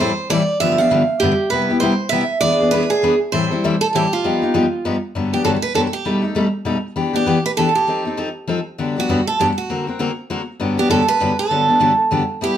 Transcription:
Already playing: C5
0.00 A2 E3 G3 C4 E4 A4
0.30 A2 E3 G3 C4 E4 A4 D5
0.60 G2 D3 F3 B3 D4 G4 E5
0.78 F3 B3 D4 G4 F5
0.91 G2 D3 F3 B3 D4 G4
1.20 G2 D3 F3 B3 D4 G4
1.50 C3 G3 B3 E4 G4 B4
1.70 B3 E4 G4
1.80 C3 G3 B3 E4 G4 C5
2.09 C3 G3 B3 E4 G4 E5
2.41 E3 B3 D4 G#4 D5
2.60 B3 D4 G#4
2.71 E3 B3 D4 G#4 B4
2.90 G#4
3.03 E3 B3 D4 G#4
3.32 A2 E3 G3 C4 E4 A4 C5
3.51 G3 C4 E4 A4
3.64 A2 E3 G3 C4 E4 A4
3.81 A4
3.95 A2 E3 G3 C4 E4 G4 A4
4.13 F4
4.24 G2 F3 B3 D#4 G4
4.42 B3 D#4 G4
4.54 G2 F3 B3 D#4 G4
4.85 G2 F3 B3 D#4 G4
5.15 G2 D3 F#3 B3 D4 G4
5.33 F#3 B3 D4 G4
5.44 G2 D3 F#3 B3 D4 G4 A4
5.62 B4
5.75 G2 D3 F#3 B3 D4 G4 A4
5.93 G4
6.05 B2 G3 A3 D#4 A4
6.22 A3 D#4 A4
6.35 B2 G3 A3 D#4 A4
6.65 B2 G3 A3 D#4 A4
6.96 E3 B3 D4 G4
7.13 B3 D4 G4
7.26 E3 B3 D4 G4
7.46 B4
7.57 E3 B3 D4 G4 A4
7.75 G4
7.88 F3 C4 D#4 A4
8.05 C4 D#4 A4
8.17 F3 C4 D#4 A4
8.47 F3 C4 D#4 A4
8.78 G2 D3 F#3 B3 D4 G4
8.96 F#3 B3 D4 F#4 G4
9.09 G2 D3 F#3 B3 D4 G4
9.27 A4
9.40 G2 D3 F#3 B3 D4 G4
9.58 F#4
9.70 D3 A#3 C4 F#4 A#4
9.87 C4 F#4 A#4
9.99 D3 A#3 C4 F#4 A#4
10.30 D3 A#3 C4 F#4 A#4
10.60 G2 D3 F#3 B3 D4 G4
10.77 F#3 B3 D4 G4
10.90 G2 D3 F#3 B3 D4 G4 A4
11.08 B4
11.20 G2 D3 F#3 B3 D4 G4
11.39 A4
11.50 G2 D3 F#3 B3 D4 G4
11.68 F#3 B3 D4 G4
11.80 G2 D3 F#3 B3 D4 G4
12.11 G2 D3 F#3 B3 D4 G4
12.41 G3 B3 E4 G4

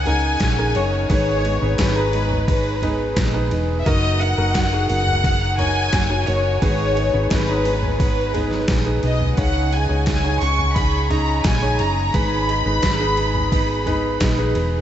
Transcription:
Already playing: C#2 C#3 D#4 G#4 A#4 C#5
0.05 C#4 D#4 G#4 A#4 G#5, floor tom, ride
0.40 A#1 C#3 G#3 C#4 D#4 G#4, kick, snare, clap, ride
0.58 D#4 G#4 A#4
0.75 F#1 C#4 D#4 G#4 C#5, ride
1.09 G#1 G#2 D#3 G#3 B3 D#4 G#4 B4 C#5, kick, ride
1.44 G#3 B3 D#4 G#4, ride
1.62 G#1 D#4 G#4 B4
1.78 G#1 G#2 D#3 G#3 B3 D#4 G#4 B4, kick, snare, clap, ride
1.96 D#4 G#4 A#5
2.13 G#3 B3 D#4 G#4, ride
2.31 floor tom
2.47 G#3 B3 D#4 G#4 B4, kick, ride
2.82 G#3 B3 D#4 G#4 B4, floor tom, ride
3.16 A#1 G#2 D#3 G#3 B3 D#4 G#4, kick, snare, clap, ride
3.34 D#4 G#4 B4
3.51 E1 G#3 B3 D#4 G#4, ride
3.79 E5
3.85 F#1 F#3 D#4 F#4 A#4 D#5, kick, ride
4.20 D#4 F#4 A#4 F#5, ride
4.38 F#1 D#4 F#4 A#4
4.55 F#3 D#4 F#4 A#4, kick, snare, clap, ride
4.73 D#4 F#4 G#4
4.89 F#1 D#4 F#4 A#4 F#5, ride
5.07 floor tom
5.23 F#3 D#4 F#4 A#4, kick, ride
5.58 D#4 F#4 A#4 C#5 G#5, floor tom, ride
5.92 F#1 F#3 D#4 F#4 A#4, kick, snare, clap, ride
6.10 D#4 F#4 C#5
6.27 F#1 D#4 F#4 A#4 C#5, ride
6.61 G#1 G#2 D#3 G#3 B3 D#4 G#4 B4 C#5, kick, ride
6.95 G#3 B3 D#4 G#4, ride
7.14 G#1 D#4 G#4 B4
7.30 G#1 G#2 D#3 G#3 B3 D#4 G#4 B4, kick, snare, clap, ride
7.48 D#4 G#4 A#5
7.65 G#3 B3 D#4 G#4, ride
7.83 floor tom
7.99 G#3 B3 D#4 G#4 B4, kick, ride
8.34 G#3 B3 D#4 G#4 B4, floor tom, ride
8.51 snare
8.68 A#1 G#2 D#3 G#3 B3 D#4 G#4, kick, snare, clap, ride
8.86 D#4 G#4 B4
9.03 B1 G#3 B3 D#4 G#4 D#5, ride
9.20 floor tom
9.37 C#2 C#3 G#3 C#4 D#4 G#4 C#5 F#5, kick, ride
9.72 C#4 D#4 G#4 G#5, ride
9.89 C#2 D#4 G#4 C#5
10.07 C#3 G#3 C#4 D#4 G#4 G#5, kick, snare, clap, ride
10.24 D#4 G#4 C#5
10.41 C#2 C#4 D#4 G#4 C#6, ride
10.59 floor tom
10.75 G#3 C#4 D#4 G#4 B5, kick, ride
11.09 C#4 D#4 G#4 D#5 A#5, floor tom, ride
11.44 A#1 C#3 G#3 C#4 D#4 G#4 G#5, kick, snare, clap, ride
11.62 D#4 G#4 C#5
11.79 F#1 C#4 D#4 G#4 A#5, ride
12.13 G#1 G#2 D#3 G#3 B3 D#4 G#4 B4 B5, kick, ride
12.48 G#3 B3 D#4 G#4, ride
12.66 G#1 D#4 G#4 B4
12.83 G#1 G#2 D#3 G#3 B3 D#4 G#4, kick, snare, clap, ride
13.01 D#4 G#4 B4
13.17 G#3 B3 D#4 G#4, ride
13.35 floor tom
13.52 G#3 B3 D#4 G#4, kick, ride
13.86 G#3 B3 D#4 G#4 B4, floor tom, ride
14.20 A#1 G#2 D#3 G#3 B3 D#4 G#4, kick, snare, clap, ride
14.39 D#4 G#4 B4
14.55 E1 G#3 B3 D#4 G#4, ride

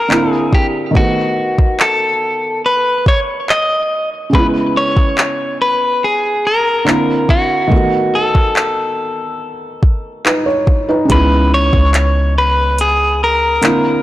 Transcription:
Already playing: A#4
0.09 D3 A#3 C4 E4, clap
0.32 G#4
0.53 G4, kick
0.91 D#3 A3
0.95 B3 F#4, kick
1.58 kick
1.80 A4, clap
2.66 B4
3.06 C#5, kick
3.49 D#5, clap
4.30 C#3 G#3, kick
4.35 B3 E4 B4
4.77 C#5
4.97 kick
5.18 clap
5.62 B4
6.04 G#4
6.47 A#4
6.85 D3 A#3 C4, clap
6.89 E4
7.29 F#4, kick
7.67 D#3 A3
7.72 B3 F#4, kick
8.15 A4
8.35 kick
8.56 clap
9.83 kick
10.25 D#4 B4, clap
10.46 C#5
10.67 kick
10.88 D#4 B4
11.05 C#3 G#3
11.10 C#2 B3 E4 B4, kick, closed hi-hat
11.54 C#5
11.73 C#2, kick
11.94 clap, closed hi-hat
12.38 B4
12.78 G#4, closed hi-hat
13.24 A#4
13.61 D3 A#3 C4, clap, closed hi-hat
13.65 E4

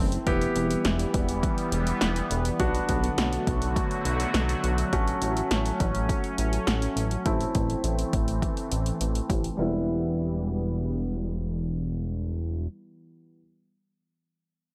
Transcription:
Already playing: F#1 E3 A3 C4 E4
0.12 closed hi-hat
0.27 E1 E3 G3 B3 E4 G4, kick, closed hi-hat
0.41 closed hi-hat
0.56 E1, closed hi-hat
0.71 closed hi-hat
0.85 E1, snare, closed hi-hat
0.99 closed hi-hat
1.14 E1, kick, closed hi-hat
1.29 closed hi-hat
1.43 kick, closed hi-hat
1.58 closed hi-hat
1.72 E1, closed hi-hat
1.87 closed hi-hat
2.01 E1, snare, closed hi-hat
2.16 closed hi-hat
2.31 E1, closed hi-hat
2.45 closed hi-hat
2.60 B1 D3 F#3 A3 B3 D4 F#4, kick, closed hi-hat
2.75 closed hi-hat
2.89 B1, kick, closed hi-hat
3.04 closed hi-hat
3.18 B1, snare, closed hi-hat
3.33 closed hi-hat
3.47 B1, kick, closed hi-hat
3.62 closed hi-hat
3.76 kick, closed hi-hat
3.91 closed hi-hat
4.05 B1, closed hi-hat
4.20 closed hi-hat
4.34 B1, snare, closed hi-hat
4.49 closed hi-hat
4.64 B1, closed hi-hat
4.78 closed hi-hat
4.93 A1 A3 C#4 F#4, kick, closed hi-hat
5.08 closed hi-hat
5.22 A1, closed hi-hat
5.37 closed hi-hat
5.51 A1, snare, closed hi-hat
5.66 closed hi-hat
5.80 A1, kick, closed hi-hat
5.95 closed hi-hat
6.09 kick, closed hi-hat
6.24 closed hi-hat
6.38 A1, closed hi-hat
6.53 closed hi-hat
6.67 A1, snare, closed hi-hat
6.82 closed hi-hat
6.96 A1, closed hi-hat
7.11 closed hi-hat
7.26 A1 E3 A3 C4 E4, kick, closed hi-hat
7.41 closed hi-hat
7.55 A1, kick, closed hi-hat
7.70 closed hi-hat
7.84 A1, closed hi-hat
7.99 closed hi-hat
8.13 A1, kick, closed hi-hat
8.28 closed hi-hat
8.42 kick, closed hi-hat
8.57 closed hi-hat
8.71 A1, closed hi-hat
8.86 closed hi-hat
9.01 A1, closed hi-hat
9.15 closed hi-hat
9.30 A1, kick, closed hi-hat
9.44 closed hi-hat
9.57 E1 E3 G3 B3
9.61 E4

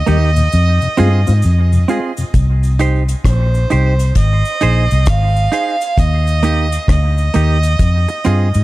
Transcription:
Already playing: D#5
0.06 D#2 G3 A#3 D#4 G4, cabasa
0.36 D#2 A#2, cabasa
0.52 F2, cabasa
0.81 F2 C3, cabasa
0.97 G2 G#3 C4 F4 G#4, cabasa
1.27 G#2 C4 F4, cabasa
1.42 F2, cabasa
1.73 F2 C3, cabasa
1.88 G#3 C4 F4 G#4, cabasa
2.17 F2 C3, cabasa
2.34 C2, kick, closed hi-hat, cabasa
2.63 cabasa
2.79 D#4 G4 C5, closed hi-hat, cabasa
3.09 closed hi-hat, cabasa
3.25 A#1 C5, kick, cross-stick, closed hi-hat, cabasa
3.54 cabasa
3.70 C2 D#4 G4 C5, closed hi-hat, cabasa
4.00 closed hi-hat, cabasa
4.15 G#1 D#5, kick, closed hi-hat, cabasa
4.45 cabasa
4.61 A#1 D#4 G#4 C5, closed hi-hat, cabasa
4.91 C2, closed hi-hat, cabasa
5.06 G#1 F5, kick, cross-stick, closed hi-hat, cabasa
5.36 cabasa
5.52 D#4 G#4 C5, closed hi-hat, cabasa
5.81 closed hi-hat, cabasa
5.98 D#2 D#5, kick, closed hi-hat, cabasa
6.27 cabasa
6.43 A#3 D#4 G4, closed hi-hat, cabasa
6.72 closed hi-hat, cabasa
6.88 D2 D#5, kick, cross-stick, closed hi-hat, cabasa
7.18 cabasa
7.34 D#2 A#3 D#4 G4, closed hi-hat, cabasa
7.63 closed hi-hat, cabasa
7.79 F2, kick, closed hi-hat, cabasa
8.08 muted clean electric guitar stroke, cabasa
8.24 G2 C4 F4 G#4, closed hi-hat, cabasa
8.54 G#2, closed hi-hat, cabasa

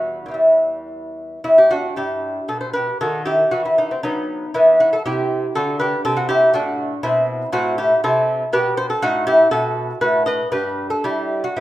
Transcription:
Already playing: E2 E3 G3 F#4
0.26 E2 E3
0.31 G3 E4
1.44 E2 E4
1.58 G4
1.71 D4 F#4
1.96 G2 E4 G4
2.48 B2 A4
2.61 C5
2.73 G4 B4
3.01 D#3 F#4 A4
3.25 E4 G4
3.51 E3 F#4
3.65 E4
3.78 D#4
3.91 C4
4.03 F#3 B3 D#4
4.54 E3 B3 E4
4.80 F#4
4.93 A4
5.06 C3 E4 G4
5.55 D3 F#4 A4
5.80 G4 B4
6.05 C3 A4
6.17 F#4
6.29 E4 G4
6.54 A2 D4 F#4
7.03 B2 C4 E4
7.52 A2 C4 F#4
7.78 E4 G4
8.04 C3 E4 A4
8.53 B2 G4 B4
8.77 C5
8.90 A4
9.02 A2 D#4 F#4
9.27 E4 G4
9.51 B2 F#4 A4
10.01 A2 F#4 B4
10.26 B4 D#5
10.52 G2 G4 B4
10.90 A4
11.04 G3 E4 G4
11.44 F#4
11.56 A2 E4

